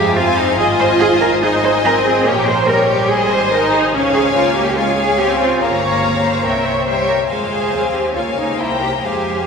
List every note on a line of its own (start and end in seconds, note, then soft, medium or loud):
0.00 0.58 F2 medium
0.00 0.15 G#3 medium
0.00 0.15 G4 medium
0.00 0.14 C5 medium
0.00 0.14 F5 medium
0.00 0.15 G#5 medium
0.15 0.58 C4 medium
0.15 0.37 F4 medium
0.15 0.57 C5 medium
0.15 0.57 F5 medium
0.15 0.58 G#5 medium
0.37 0.58 D#4 medium
0.58 2.25 G#1 medium
0.58 1.41 F4 medium
0.58 0.66 G#4 loud
0.58 1.42 C5 medium
0.58 1.42 D#5 medium
0.58 1.42 G#5 medium
0.79 0.87 C5 loud
1.00 1.08 G#4 loud
1.21 1.29 A#4 loud
1.43 1.85 D#4 medium
1.43 1.51 G#4 medium
1.43 2.25 C5 medium
1.43 2.25 D#5 medium
1.43 2.26 G#5 medium
1.63 1.71 C5 medium
1.85 2.26 C4 medium
1.85 1.93 A#4 loud
2.06 2.26 G#4 medium
2.27 3.10 A#1 medium
2.27 2.69 A#3 medium
2.27 2.48 G4 loud
2.27 2.68 C#5 medium
2.27 2.68 G5 medium
2.48 2.69 C5 loud
2.69 3.54 G3 medium
2.69 2.90 A#4 medium
2.69 3.11 C#5 medium
2.69 3.10 G5 medium
2.89 3.10 G4 medium
3.10 3.95 G#1 medium
3.10 3.32 G#4 loud
3.10 3.96 C5 medium
3.10 3.96 D#5 medium
3.10 3.95 G#5 medium
3.32 3.53 C5 loud
3.53 3.94 D#4 medium
3.53 3.74 A#4 medium
3.73 3.81 G#4 medium
3.95 5.62 C#2 medium
3.95 4.37 C#4 medium
3.95 4.76 C#5 medium
3.95 4.76 F5 medium
3.95 4.77 G#5 medium
4.15 4.23 G#4 medium
4.36 4.77 A#3 medium
4.36 4.56 F4 medium
4.56 4.77 G4 medium
4.77 5.20 G#3 medium
4.77 4.99 F4 medium
4.77 5.59 C#5 medium
4.77 5.60 F5 medium
4.77 5.60 G#5 medium
4.99 5.19 G#4 medium
5.19 5.62 C4 medium
5.19 5.40 G4 medium
5.40 5.61 F4 medium
5.61 6.45 G1 medium
5.61 6.46 A#3 medium
5.61 6.44 C#5 medium
5.61 6.44 F5 medium
5.61 6.44 A#5 medium
5.83 6.22 C#5 medium
6.24 6.45 C5 medium
6.45 7.30 C2 medium
6.45 6.88 C4 medium
6.45 6.67 A#4 medium
6.45 6.87 C#5 medium
6.45 6.87 E5 medium
6.45 6.87 G5 medium
6.67 6.88 C#5 medium
6.87 7.29 G3 medium
6.87 7.08 C5 medium
6.87 7.30 C#5 medium
6.87 7.29 E5 medium
6.87 7.30 G5 medium
7.09 7.17 A#4 medium
7.29 7.69 F2 medium
7.29 7.72 G#3 medium
7.29 8.11 C5 medium
7.29 8.11 F5 medium
7.29 8.11 G#5 medium
7.51 7.91 G#4 medium
7.72 8.15 D#2 soft
7.72 8.15 C4 soft
7.94 8.15 G4 medium
8.15 8.59 C#2 medium
8.15 9.04 A#3 medium
8.15 8.24 F4 medium
8.15 8.59 C#5 soft
8.15 8.58 F5 soft
8.15 8.58 G#5 medium
8.38 8.59 D#4 medium
8.58 9.04 C2 soft
8.58 8.81 E4 medium
8.58 9.03 C5 medium
8.58 9.04 G5 medium
8.58 9.04 A#5 medium
8.82 8.90 G4 medium
9.04 9.47 F2 soft
9.04 9.47 G#3 soft
9.04 9.47 G4 medium
9.04 9.47 C5 soft
9.04 9.47 F5 soft
9.04 9.47 G#5 soft